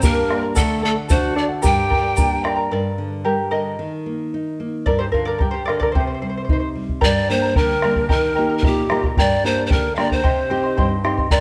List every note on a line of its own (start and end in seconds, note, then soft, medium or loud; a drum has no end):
0.00 0.53 G2 medium
0.00 0.55 A#3 soft
0.00 0.40 A#3 medium
0.00 0.55 D4 soft
0.00 0.55 G4 medium
0.00 0.28 A#4 medium
0.00 0.28 D5 medium
0.00 0.27 G5 medium
0.00 0.29 A#5 medium
0.00 bombo low medium
0.00 shaker medium
0.04 0.41 A#4 medium
0.29 0.42 A#4 medium
0.29 0.42 D5 medium
0.29 0.42 G5 medium
0.29 0.40 A#5 medium
0.29 bombo rim soft
0.42 0.55 A#4 soft
0.42 0.54 D5 soft
0.42 0.56 A#5 soft
0.55 1.61 D3 medium
0.55 0.82 A3 medium
0.55 0.81 A4 medium
0.55 0.82 A4 medium
0.55 0.82 D5 medium
0.55 0.82 F#5 medium
0.55 bombo low medium
0.55 shaker medium
0.82 0.96 A3 medium
0.82 0.96 A4 medium
0.82 0.91 A4 medium
0.82 0.96 D5 medium
0.82 0.94 F#5 medium
0.96 1.08 D5 soft
0.96 1.09 F#5 medium
1.08 1.62 A3 medium
1.08 1.63 D4 soft
1.08 1.35 F#4 medium
1.08 1.63 F#4 medium
1.08 1.34 A4 medium
1.08 1.35 C5 medium
1.08 1.35 D5 medium
1.08 1.35 F#5 medium
1.08 bombo low medium
1.08 shaker medium
1.35 1.48 D4 medium
1.35 1.50 A4 medium
1.35 1.49 D5 medium
1.35 1.44 D5 medium
1.35 1.47 F#5 medium
1.48 1.61 D5 soft
1.48 1.62 F#5 medium
1.62 2.68 G2 medium
1.62 1.90 G4 medium
1.62 2.40 G4 medium
1.62 1.89 A#4 medium
1.62 1.89 D5 medium
1.62 1.88 G5 medium
1.62 2.41 G5 loud
1.62 1.90 A#5 medium
1.62 bombo low medium
1.62 shaker medium
1.89 2.02 A#4 medium
1.89 2.01 D5 medium
1.89 2.03 G5 medium
1.89 2.01 A#5 medium
1.89 bombo low medium
2.02 2.15 A#4 soft
2.02 2.15 D5 medium
2.02 2.16 A#5 medium
2.15 2.70 A#3 soft
2.15 2.70 D4 soft
2.15 2.70 G4 soft
2.15 2.42 A#4 medium
2.15 2.43 D5 medium
2.15 2.42 G5 medium
2.15 2.43 A#5 medium
2.15 bombo low medium
2.15 shaker medium
2.43 2.56 A#4 medium
2.43 2.55 D5 medium
2.43 2.57 G5 medium
2.43 2.54 A#5 medium
2.43 bombo rim soft
2.56 2.70 A#4 soft
2.56 2.71 D5 medium
2.56 2.70 A#5 medium
2.71 3.76 G2 medium
2.71 3.22 A#4 medium
2.71 3.28 D5 medium
2.98 3.24 D3 soft
3.25 3.51 G3 soft
3.25 3.50 G4 medium
3.25 3.50 A#4 medium
3.51 3.78 D3 soft
3.51 4.55 A#4 medium
3.51 4.55 D#5 medium
3.79 4.84 D#3 medium
4.06 4.32 A#3 soft
4.34 4.60 D#4 soft
4.60 4.86 A#3 soft
4.86 5.91 G2 medium
4.86 5.00 A#4 medium
4.86 4.99 D5 loud
4.86 bombo low medium
4.99 5.05 G4 medium
4.99 5.04 C5 medium
5.12 5.41 D3 soft
5.12 5.26 F4 medium
5.12 5.26 A#4 medium
5.12 bombo low soft
5.25 5.37 A#4 medium
5.25 5.40 D5 medium
5.39 5.67 G3 soft
5.39 5.53 G4 medium
5.39 5.54 A#4 medium
5.39 bombo low medium
5.51 5.67 G4 medium
5.51 5.65 C5 medium
5.65 5.95 D3 soft
5.65 5.81 A#4 medium
5.65 5.78 D5 medium
5.65 bombo rim soft
5.80 5.94 A#4 medium
5.80 5.92 D5 medium
5.80 bombo low soft
5.92 6.99 C3 medium
5.92 6.02 G4 medium
5.92 5.99 C5 medium
5.92 bombo low medium
6.00 6.06 C5 soft
6.07 6.13 C5 medium
6.14 6.21 C5 soft
6.22 6.48 G3 soft
6.22 6.28 C5 medium
6.29 6.36 C5 soft
6.37 6.43 C5 medium
6.45 6.51 C5 soft
6.49 6.75 D#4 soft
6.49 6.59 C5 medium
6.49 bombo low medium
6.60 6.68 C5 soft
6.75 7.01 G3 soft
6.89 bombo low soft
7.01 7.55 G2 medium
7.01 7.29 G4 medium
7.01 7.27 A#4 medium
7.01 7.28 D5 medium
7.01 7.32 D5 loud
7.01 7.27 G5 medium
7.01 7.28 A#5 medium
7.01 bombo low medium
7.28 7.72 G3 soft
7.28 7.72 A#3 soft
7.28 7.73 D4 soft
7.28 7.42 A#4 medium
7.28 7.57 C5 medium
7.28 7.42 D5 medium
7.28 7.42 G5 medium
7.28 7.41 A#5 medium
7.42 7.54 A#4 soft
7.42 7.55 D5 medium
7.42 7.55 A#5 medium
7.55 8.09 D3 medium
7.55 7.81 A#4 medium
7.55 8.07 A#4 medium
7.55 7.82 D5 medium
7.55 7.81 G5 medium
7.55 7.83 A#5 medium
7.55 bombo low medium
7.82 8.05 G3 soft
7.82 8.05 A#3 soft
7.82 8.06 D4 medium
7.82 7.96 A#4 medium
7.82 7.96 D5 medium
7.82 7.96 G5 medium
7.82 7.95 A#5 medium
7.82 bombo rim medium
7.96 8.08 A#4 soft
7.96 8.09 D5 soft
7.96 8.09 A#5 medium
7.96 bombo low soft
8.09 8.62 D#3 medium
8.09 8.36 G4 medium
8.09 8.34 A#4 medium
8.09 8.58 A#4 medium
8.09 8.34 D#5 medium
8.09 8.34 G5 medium
8.09 8.35 A#5 medium
8.09 bombo low medium
8.35 8.80 A#3 soft
8.35 8.81 D#4 soft
8.35 8.49 A#4 medium
8.35 8.49 D#5 medium
8.35 8.49 G5 medium
8.35 8.48 A#5 medium
8.39 8.81 G4 soft
8.50 8.62 A#4 soft
8.50 8.62 D#5 medium
8.50 8.63 A#5 medium
8.58 8.67 A#4 medium
8.63 9.16 A#2 medium
8.63 9.05 G4 medium
8.63 8.89 A#4 medium
8.63 8.89 D#5 medium
8.63 8.89 G5 medium
8.63 8.90 A#5 medium
8.63 bombo low medium
8.90 9.12 A#3 soft
8.90 9.12 D#4 soft
8.90 9.12 G4 medium
8.90 9.04 A#4 medium
8.90 9.03 D#5 medium
8.90 9.03 G5 medium
8.90 9.02 A#5 medium
8.90 bombo rim medium
9.03 9.17 A#4 soft
9.03 9.17 D#5 soft
9.03 9.17 A#5 soft
9.03 bombo low medium
9.17 9.69 G2 medium
9.17 9.44 G4 medium
9.17 9.44 A#4 medium
9.17 9.44 D5 medium
9.17 9.47 D5 loud
9.17 9.43 G5 medium
9.17 9.44 A#5 medium
9.17 bombo low medium
9.44 9.87 A#3 soft
9.44 9.87 D4 soft
9.44 9.87 G4 medium
9.44 9.58 A#4 medium
9.44 9.65 C5 medium
9.44 9.57 D5 medium
9.44 9.58 G5 medium
9.44 9.57 A#5 medium
9.58 9.70 A#4 soft
9.58 9.70 D5 medium
9.58 9.71 A#5 medium
9.67 9.74 C5 medium
9.67 9.97 G5 medium
9.67 bombo low medium
9.71 10.23 D3 medium
9.71 9.97 A#4 medium
9.71 9.98 D5 medium
9.71 9.98 A#5 medium
9.96 10.19 A#3 soft
9.96 10.19 D4 soft
9.96 10.20 G4 medium
9.96 10.10 A#4 medium
9.96 10.11 D5 medium
9.96 10.09 D5 medium
9.96 10.00 F5 medium
9.96 10.11 G5 medium
9.96 10.09 A#5 medium
9.96 bombo rim soft
10.10 10.23 A#4 soft
10.10 10.88 C5 medium
10.10 10.24 D5 soft
10.10 10.24 A#5 medium
10.10 bombo low medium
10.23 10.76 C3 medium
10.23 10.51 G4 medium
10.23 10.49 C5 medium
10.23 10.49 D#5 medium
10.23 10.49 G5 medium
10.23 10.50 C6 medium
10.23 bombo low medium
10.50 10.93 C4 soft
10.50 10.94 D#4 soft
10.50 10.94 G4 medium
10.50 10.64 C5 medium
10.50 10.63 D#5 medium
10.50 10.64 G5 medium
10.50 10.62 C6 medium
10.63 10.76 C5 soft
10.63 10.77 D#5 soft
10.63 10.77 C6 medium
10.77 11.30 G2 medium
10.77 11.04 C5 medium
10.77 11.04 D#5 medium
10.77 11.03 G5 medium
10.77 11.04 C6 medium
10.77 bombo low medium
11.04 11.26 C4 soft
11.04 11.26 D#4 soft
11.04 11.26 G4 soft
11.04 11.17 C5 medium
11.04 11.17 D#5 medium
11.04 11.18 G5 medium
11.04 11.16 C6 medium
11.04 bombo rim medium
11.17 11.31 C5 soft
11.17 11.31 D#5 soft
11.17 11.31 C6 soft
11.17 bombo low medium
11.31 11.40 G2 medium
11.31 11.40 G4 medium
11.31 11.40 A#4 medium
11.31 11.40 D5 medium
11.31 11.40 D5 loud
11.31 11.40 G5 medium
11.31 11.40 A#5 medium
11.31 bombo low medium